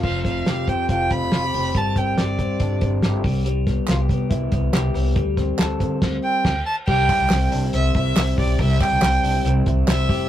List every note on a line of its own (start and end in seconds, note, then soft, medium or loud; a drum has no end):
0.00 0.39 F1 medium
0.00 1.75 F3 medium
0.00 0.24 C4 medium
0.00 0.23 F5 medium
0.00 kick loud
0.00 crash medium
0.25 0.68 C4 medium
0.25 0.70 F5 medium
0.25 kick medium
0.25 snare soft
0.25 closed hi-hat medium
0.46 0.64 F1 medium
0.46 1.32 G4 medium
0.46 snare loud
0.46 closed hi-hat medium
0.68 0.85 F2 medium
0.68 1.11 C4 medium
0.68 0.90 G5 loud
0.68 kick medium
0.68 closed hi-hat medium
0.89 1.07 F1 medium
0.89 1.31 F4 medium
0.89 1.13 G5 loud
0.89 kick medium
0.89 closed hi-hat medium
1.10 1.28 F1 medium
1.10 1.54 C4 medium
1.10 1.78 B5 loud
1.10 kick medium
1.10 closed hi-hat medium
1.32 1.50 F1 medium
1.32 1.43 F4 medium
1.32 snare loud
1.32 closed hi-hat medium
1.43 1.79 G4 medium
1.54 1.71 F1 medium
1.54 1.97 C4 medium
1.54 open hi-hat medium
1.75 2.10 G1 medium
1.75 3.24 G3 medium
1.75 1.99 A5 loud
1.75 kick loud
1.75 closed hi-hat medium
1.96 2.40 C4 medium
1.96 2.19 G5 medium
1.96 kick medium
1.96 closed hi-hat medium
2.18 2.35 G1 medium
2.18 3.03 G4 medium
2.18 2.82 D5 medium
2.18 snare loud
2.18 closed hi-hat medium
2.39 2.56 G2 medium
2.39 2.82 C4 medium
2.39 kick medium
2.39 closed hi-hat medium
2.60 2.78 G1 loud
2.60 3.29 D4 medium
2.60 kick loud
2.60 closed hi-hat medium
2.81 2.99 G1 loud
2.81 3.66 C4 medium
2.81 kick loud
2.81 closed hi-hat medium
3.02 3.20 G1 loud
3.02 3.88 G4 medium
3.02 snare loud
3.02 closed hi-hat medium
3.24 3.77 C2 loud
3.24 3.45 G3 medium
3.24 kick loud
3.24 open hi-hat medium
3.45 5.15 G3 medium
3.45 closed hi-hat medium
3.67 4.08 B3 medium
3.67 kick medium
3.67 snare soft
3.67 closed hi-hat medium
3.88 4.06 C2 loud
3.88 3.99 F4 medium
3.88 snare loud
3.88 clap medium
3.88 closed hi-hat medium
3.99 4.72 G4 medium
4.09 4.27 C3 medium
4.09 4.51 B3 medium
4.09 kick medium
4.09 closed hi-hat medium
4.30 4.48 C2 loud
4.30 5.20 E4 medium
4.30 kick medium
4.30 closed hi-hat medium
4.52 4.70 C2 loud
4.52 4.94 B3 medium
4.52 kick loud
4.52 closed hi-hat medium
4.73 4.91 C2 loud
4.73 5.58 G4 medium
4.73 snare loud
4.73 clap medium
4.73 closed hi-hat medium
4.94 5.12 C2 loud
4.94 5.21 B3 medium
4.94 open hi-hat medium
5.16 5.51 D2 loud
5.16 6.52 G3 medium
5.16 kick loud
5.16 closed hi-hat medium
5.37 5.80 C4 medium
5.37 kick medium
5.37 snare soft
5.37 closed hi-hat medium
5.58 5.76 D2 medium
5.58 6.02 A4 medium
5.58 snare loud
5.58 clap medium
5.58 closed hi-hat medium
5.80 5.98 D3 loud
5.80 6.52 C4 medium
5.80 kick medium
5.80 closed hi-hat medium
6.02 6.17 D2 loud
6.02 kick loud
6.02 snare loud
6.02 crash medium
6.23 6.63 G5 loud
6.45 6.59 D2 medium
6.45 kick loud
6.45 snare loud
6.45 crash medium
6.66 6.76 A5 loud
6.87 7.05 C2 loud
6.87 8.58 G3 medium
6.87 8.37 G4 medium
6.87 7.48 G5 loud
6.87 kick loud
6.87 crash medium
7.09 7.52 E4 medium
7.09 kick medium
7.09 clap medium
7.09 hi-hat pedal medium
7.09 open hi-hat medium
7.20 7.28 C2 medium
7.30 7.48 C2 loud
7.30 7.73 C4 medium
7.30 snare loud
7.30 clap medium
7.30 hi-hat pedal medium
7.30 open hi-hat medium
7.52 7.69 C2 medium
7.52 7.64 D4 medium
7.52 hi-hat pedal medium
7.52 open hi-hat medium
7.64 7.95 E4 medium
7.73 7.91 C2 loud
7.73 8.16 C4 medium
7.73 7.94 E5 loud
7.73 hi-hat pedal medium
7.73 open hi-hat medium
7.94 8.12 C2 loud
7.94 8.80 E4 medium
7.94 8.35 E5 loud
7.94 kick loud
7.94 hi-hat pedal medium
7.94 open hi-hat medium
8.16 8.34 C2 medium
8.16 9.01 C4 medium
8.16 snare loud
8.16 clap loud
8.16 hi-hat pedal medium
8.16 open hi-hat medium
8.38 8.55 B1 loud
8.38 8.59 G4 medium
8.38 8.63 D5 medium
8.38 kick medium
8.38 hi-hat pedal medium
8.38 open hi-hat medium
8.59 8.76 C2 loud
8.59 10.29 G3 medium
8.59 10.08 G4 medium
8.59 8.83 E5 medium
8.59 kick loud
8.59 hi-hat pedal medium
8.59 open hi-hat medium
8.80 9.23 E4 medium
8.80 9.45 G5 loud
8.80 kick medium
8.80 clap medium
8.80 hi-hat pedal medium
8.80 open hi-hat medium
8.91 9.00 C2 medium
9.01 9.19 C2 loud
9.01 9.44 C4 medium
9.01 snare loud
9.01 clap loud
9.01 hi-hat pedal medium
9.01 open hi-hat medium
9.23 9.41 C2 medium
9.23 9.34 D4 medium
9.23 hi-hat pedal medium
9.23 open hi-hat medium
9.34 9.65 E4 medium
9.44 9.62 C2 loud
9.44 9.87 C4 medium
9.44 hi-hat pedal medium
9.44 open hi-hat medium
9.66 9.84 C2 loud
9.66 10.29 E4 medium
9.66 kick loud
9.66 hi-hat pedal medium
9.66 open hi-hat medium
9.87 10.05 C2 medium
9.87 10.29 C4 medium
9.87 10.28 E5 medium
9.87 snare loud
9.87 clap medium
9.87 hi-hat pedal medium
9.87 open hi-hat medium
10.09 10.27 F1 medium
10.09 10.29 G4 medium
10.09 kick loud
10.09 hi-hat pedal medium
10.09 open hi-hat medium